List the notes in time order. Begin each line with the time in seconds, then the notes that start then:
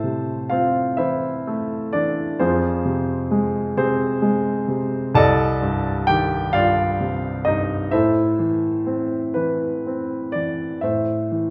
Already playing: A2 A4 C5 E5 A5
0.04 C3
0.49 C4 F4 F5
0.97 E3 E4 C5 E5
1.47 A3
1.93 E3 D4 D5
2.39 F2 C4 F4 G#4 C5
2.85 C3
3.31 G#3
3.77 C3 C4 G#4 C5
4.22 G#3
4.68 C3
5.15 C2 A4 D5 D#5 A5
5.62 G2
6.07 D#3 G4 G5
6.53 G2 F4 D5 F5
7.00 C3
7.45 G2 D#4 D#5
7.91 A2 E4 A4 C5 E5
8.39 E3
8.87 C4
9.34 E3 B4
9.87 C4
10.32 E3 D5
10.81 A2 C5 E5
11.32 E3